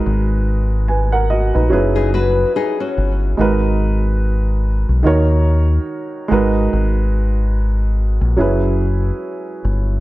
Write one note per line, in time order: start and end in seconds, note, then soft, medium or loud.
0.00 0.97 G#3 medium
0.00 0.88 D#4 medium
0.00 0.88 F#4 medium
0.00 0.89 A#4 medium
0.00 0.88 B4 medium
0.06 1.51 G#1 loud
0.88 1.12 B4 medium
0.88 1.11 G#5 medium
1.12 1.29 A#4 medium
1.12 1.29 F#5 medium
1.30 1.53 F#4 medium
1.30 1.53 D#5 medium
1.54 1.70 A#1 medium
1.54 1.94 D#4 medium
1.54 1.72 B4 medium
1.69 2.44 F#1 loud
1.69 3.00 F#3 medium
1.69 3.01 C#4 medium
1.69 3.01 E4 medium
1.69 3.02 G#4 medium
1.73 3.02 B4 medium
1.96 2.13 D#4 medium
1.96 2.12 G#4 medium
2.14 2.54 F#4 medium
2.14 2.53 B4 medium
2.56 2.79 D#4 medium
2.56 2.78 G#4 medium
2.80 3.36 C#4 medium
2.80 3.36 F#4 medium
2.98 3.33 G1 medium
3.37 4.84 G#1 loud
3.37 4.67 G#3 medium
3.37 4.68 D#4 medium
3.37 4.68 F#4 medium
3.37 4.69 A#4 medium
3.37 4.69 B4 loud
4.89 5.03 B1 medium
5.03 5.77 D#2 loud
5.03 6.29 D#3 medium
5.03 6.28 D#4 medium
5.03 6.29 F#4 medium
5.03 6.30 A#4 medium
5.03 6.31 C#5 medium
6.28 6.67 G#1 medium
6.28 7.64 G#3 medium
6.28 7.64 D#4 medium
6.28 7.65 F#4 medium
6.28 7.65 A#4 medium
6.28 7.66 B4 medium
6.73 8.17 G#1 loud
8.21 8.36 A#1 medium
8.37 9.10 F#1 loud
8.37 9.67 F#3 medium
8.37 9.68 C#4 medium
8.37 9.68 E4 medium
8.37 9.69 G#4 medium
8.37 9.69 B4 medium
9.65 10.00 G1 medium